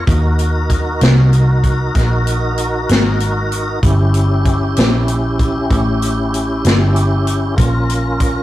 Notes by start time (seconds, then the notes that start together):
0.06 D#2 D#4 F#4 A#4, kick, closed hi-hat
0.39 closed hi-hat
0.70 kick, closed hi-hat
1.01 C2, snare, closed hi-hat
1.33 closed hi-hat
1.64 kick, closed hi-hat
1.95 A#1, kick, snare, closed hi-hat
2.27 closed hi-hat
2.58 closed hi-hat
2.89 G#1, snare, closed hi-hat
3.20 closed hi-hat
3.52 closed hi-hat
3.83 G1 C#4 E4 G4, kick, closed hi-hat
4.14 closed hi-hat
4.45 kick, closed hi-hat
4.76 A#1, snare, closed hi-hat
5.08 closed hi-hat
5.39 kick, closed hi-hat
5.70 A1, kick, closed hi-hat
6.02 closed hi-hat
6.34 closed hi-hat
6.65 G1, snare, closed hi-hat
6.96 closed hi-hat
7.27 closed hi-hat
7.56 A#1 C#4 F4 A#4, kick, closed hi-hat
7.89 closed hi-hat
8.20 kick, closed hi-hat